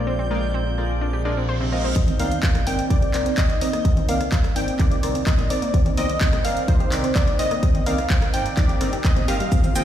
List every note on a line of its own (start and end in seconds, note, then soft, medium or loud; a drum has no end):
0.00 1.94 A#1 medium
0.00 1.92 D3 medium
0.00 1.92 G#3 medium
0.00 1.92 F4 medium
0.00 1.45 D5 loud
0.00 1.97 G6 medium
0.07 0.14 C4 medium
0.07 1.94 C4 medium
0.19 0.26 C4 medium
0.31 0.38 G#3 loud
0.31 0.35 A#3 medium
0.31 0.38 F4 medium
0.31 0.38 A#4 medium
0.31 0.38 D5 loud
0.54 0.65 C4 medium
0.78 1.22 G#3 medium
0.78 1.22 F4 medium
0.78 1.22 A#4 medium
0.78 1.22 D5 medium
1.02 1.08 D4 medium
1.02 reverse cymbal medium
1.13 1.23 G4 medium
1.25 1.32 G#3 medium
1.25 1.29 D4 loud
1.25 1.32 F4 medium
1.25 1.32 A#4 medium
1.25 1.32 D5 loud
1.37 1.44 C4 medium
1.49 1.56 C5 loud
1.61 1.71 C3 loud
1.72 1.84 G#3 medium
1.72 1.83 C4 medium
1.72 1.84 F4 medium
1.72 1.84 A#4 medium
1.72 2.21 D#5 medium
1.72 1.84 F5 medium
1.84 1.91 C4 medium
1.96 2.10 C2 medium
1.96 9.48 D#3 medium
1.96 9.48 A#3 medium
1.96 9.84 C4 medium
1.96 2.03 C4 medium
1.96 9.48 D#4 medium
1.96 kick loud
1.96 closed hi-hat medium
2.08 2.15 C4 medium
2.08 closed hi-hat soft
2.08 high conga medium
2.20 2.34 C2 medium
2.20 2.24 A#3 medium
2.20 2.27 C4 loud
2.20 2.27 D#4 medium
2.20 2.27 A#4 medium
2.20 2.27 D5 loud
2.20 2.66 F5 medium
2.20 open hi-hat loud
2.20 high conga medium
2.32 closed hi-hat soft
2.43 2.50 C2 medium
2.43 2.54 C4 medium
2.43 kick loud
2.43 clap loud
2.43 closed hi-hat medium
2.55 2.62 C2 medium
2.55 cross-stick medium
2.55 closed hi-hat soft
2.55 low conga medium
2.67 2.81 G1 medium
2.67 3.11 C4 medium
2.67 3.11 D#4 medium
2.67 3.11 A#4 medium
2.67 3.11 D5 medium
2.67 2.92 G5 medium
2.67 open hi-hat medium
2.79 closed hi-hat soft
2.90 3.05 C2 medium
2.90 2.97 D#4 medium
2.90 3.39 D5 medium
2.90 kick loud
2.90 closed hi-hat medium
3.02 3.12 G4 medium
3.02 closed hi-hat soft
3.14 3.29 C2 loud
3.14 3.25 C4 medium
3.14 3.25 D#4 medium
3.14 3.25 A#4 medium
3.14 3.21 C5 medium
3.14 3.25 D5 medium
3.14 clap medium
3.14 open hi-hat loud
3.26 3.33 C4 medium
3.26 closed hi-hat soft
3.38 3.45 C2 loud
3.38 3.48 C4 medium
3.38 3.61 D#5 medium
3.38 kick loud
3.38 clap loud
3.38 closed hi-hat medium
3.50 closed hi-hat soft
3.61 3.69 C2 medium
3.61 3.68 C4 medium
3.61 3.68 D#4 medium
3.61 3.68 A#4 medium
3.61 3.68 D5 medium
3.61 4.10 D#5 loud
3.61 open hi-hat medium
3.73 3.83 A#3 medium
3.73 cross-stick medium
3.73 closed hi-hat soft
3.85 3.99 C2 loud
3.85 3.92 C4 medium
3.85 kick loud
3.85 closed hi-hat medium
3.97 4.04 C4 medium
3.97 closed hi-hat soft
3.97 high conga medium
4.09 4.23 C2 medium
4.09 4.13 A#3 medium
4.09 4.16 C4 medium
4.09 4.16 D#4 medium
4.09 4.16 A#4 medium
4.09 4.16 D5 loud
4.09 4.58 F5 loud
4.09 open hi-hat loud
4.21 cross-stick medium
4.21 closed hi-hat soft
4.32 4.39 C2 medium
4.32 4.43 C4 medium
4.32 kick loud
4.32 clap loud
4.32 closed hi-hat medium
4.44 4.51 C2 medium
4.44 cross-stick medium
4.44 closed hi-hat soft
4.56 4.70 G1 medium
4.56 5.00 C4 medium
4.56 5.00 D#4 medium
4.56 5.00 A#4 medium
4.56 5.00 D5 medium
4.56 4.79 G5 loud
4.56 open hi-hat medium
4.68 closed hi-hat soft
4.79 4.94 C2 medium
4.79 4.86 D#4 medium
4.79 5.28 D5 medium
4.79 kick loud
4.79 clap medium
4.79 closed hi-hat medium
4.91 5.01 G4 medium
4.91 closed hi-hat soft
5.03 5.18 C2 loud
5.03 5.14 C4 medium
5.03 5.14 D#4 medium
5.03 5.14 A#4 medium
5.03 5.10 C5 medium
5.03 5.14 D5 medium
5.03 cross-stick medium
5.03 open hi-hat loud
5.15 5.22 C4 medium
5.15 closed hi-hat soft
5.27 5.34 C2 loud
5.27 5.37 C4 medium
5.27 5.50 D#5 medium
5.27 kick loud
5.27 clap loud
5.27 closed hi-hat medium
5.39 closed hi-hat soft
5.39 low conga medium
5.50 5.58 C2 medium
5.50 5.57 C4 medium
5.50 5.57 D#4 medium
5.50 5.57 A#4 medium
5.50 5.57 D5 medium
5.50 5.94 D5 loud
5.50 open hi-hat medium
5.62 5.72 A#3 medium
5.62 closed hi-hat soft
5.74 5.88 C2 medium
5.74 5.81 C4 medium
5.74 kick loud
5.74 closed hi-hat medium
5.86 5.93 C4 medium
5.86 closed hi-hat soft
5.86 high conga medium
5.97 6.12 C2 medium
5.97 6.02 A#3 medium
5.97 6.05 C4 medium
5.97 6.05 D#4 medium
5.97 6.05 A#4 medium
5.97 6.05 D5 loud
5.97 6.46 D#5 loud
5.97 open hi-hat loud
5.97 high conga medium
6.09 closed hi-hat soft
6.21 6.28 C2 medium
6.21 6.31 C4 medium
6.21 kick loud
6.21 clap loud
6.21 closed hi-hat medium
6.33 6.40 C2 medium
6.33 cross-stick medium
6.33 closed hi-hat soft
6.33 low conga medium
6.45 6.59 G1 medium
6.45 6.89 C4 medium
6.45 6.89 D#4 medium
6.45 6.89 A#4 medium
6.45 6.89 D5 medium
6.45 6.70 F5 loud
6.45 open hi-hat medium
6.57 closed hi-hat soft
6.68 6.83 C2 medium
6.68 6.75 D#4 medium
6.68 7.15 C5 medium
6.68 kick loud
6.68 closed hi-hat medium
6.80 6.90 G4 medium
6.80 closed hi-hat soft
6.92 7.06 C2 loud
6.92 7.03 C4 medium
6.92 7.03 D#4 medium
6.92 7.03 A#4 medium
6.92 6.99 C5 medium
6.92 7.03 D5 loud
6.92 clap medium
6.92 open hi-hat loud
7.04 7.11 C4 medium
7.04 closed hi-hat soft
7.15 7.23 C2 loud
7.15 7.26 C4 medium
7.15 7.38 D5 loud
7.15 kick loud
7.15 clap loud
7.15 closed hi-hat medium
7.28 closed hi-hat soft
7.39 7.47 C2 medium
7.39 7.46 C4 medium
7.39 7.46 D#4 medium
7.39 7.46 A#4 medium
7.39 7.46 D5 medium
7.39 7.88 D#5 loud
7.39 open hi-hat loud
7.51 7.61 A#3 medium
7.51 cross-stick medium
7.51 closed hi-hat soft
7.63 7.77 C2 loud
7.63 7.70 C4 medium
7.63 kick loud
7.63 closed hi-hat medium
7.75 7.82 C4 medium
7.75 closed hi-hat soft
7.75 high conga medium
7.86 8.01 C2 medium
7.86 7.91 A#3 medium
7.86 7.94 C4 medium
7.86 7.94 D#4 medium
7.86 7.94 A#4 medium
7.86 7.94 D5 loud
7.86 8.35 F5 loud
7.86 open hi-hat loud
7.98 cross-stick medium
7.98 closed hi-hat soft
8.10 8.17 C2 medium
8.10 8.20 C4 medium
8.10 kick loud
8.10 clap loud
8.10 closed hi-hat medium
8.22 8.29 C2 medium
8.22 cross-stick medium
8.22 closed hi-hat soft
8.34 8.48 G1 medium
8.34 8.78 C4 medium
8.34 8.78 D#4 medium
8.34 8.78 A#4 medium
8.34 8.78 D5 medium
8.34 8.57 G5 loud
8.34 open hi-hat medium
8.46 closed hi-hat soft
8.57 8.72 G1 loud
8.57 8.64 D#4 medium
8.57 9.06 D5 loud
8.57 kick loud
8.57 clap medium
8.57 closed hi-hat medium
8.69 8.79 G4 medium
8.69 closed hi-hat soft
8.81 8.96 G1 loud
8.81 8.88 C4 loud
8.81 8.85 C4 medium
8.81 8.88 D#4 medium
8.81 8.88 A#4 medium
8.81 8.88 D5 loud
8.81 cross-stick medium
8.81 open hi-hat loud
8.93 9.00 G4 medium
8.93 closed hi-hat soft
9.05 9.19 C2 medium
9.05 9.11 C4 medium
9.05 9.28 D#5 loud
9.05 kick loud
9.05 clap loud
9.05 closed hi-hat medium
9.16 9.27 C4 medium
9.16 closed hi-hat soft
9.16 low conga medium
9.28 9.43 G1 medium
9.28 9.40 C4 medium
9.28 9.40 D#4 medium
9.28 9.38 G4 loud
9.28 9.40 A#4 medium
9.28 9.40 D#5 medium
9.28 9.77 F5 loud
9.28 open hi-hat medium
9.40 9.47 G3 medium
9.40 closed hi-hat soft
9.52 9.66 F1 loud
9.52 9.84 D#3 medium
9.52 9.84 G#3 medium
9.52 9.59 C4 medium
9.52 9.84 F4 medium
9.52 kick loud
9.52 closed hi-hat medium
9.52 shaker soft
9.64 9.71 C4 medium
9.64 closed hi-hat soft
9.64 high conga medium
9.64 shaker soft
9.75 9.84 F1 medium
9.75 9.80 A#3 medium
9.75 9.83 C4 medium
9.75 9.83 F4 medium
9.75 9.83 G#4 medium
9.75 9.83 D#5 loud
9.75 9.84 G5 loud
9.75 open hi-hat loud
9.75 high conga medium
9.75 shaker medium